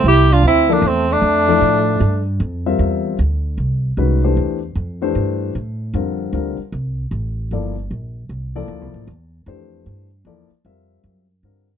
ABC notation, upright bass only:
X:1
M:3/4
L:1/8
Q:"Swing" 1/4=153
K:F
V:1 name="Upright bass" clef=bass
C,,2 D,,2 E,,2 | F,,2 A,,2 G,,2 | F,,2 E,,2 D,,2 | C,,2 C,,2 E,,2 |
F,,2 G,,2 A,,2 | F,,2 D,, z C,,2 | A,,,2 G,,,2 B,,,2 | C,,2 (3D,, C,, A,,, E,,2 |
F,,2 G,,2 E,, z | F,,2 _G,,2 =G,,2 |]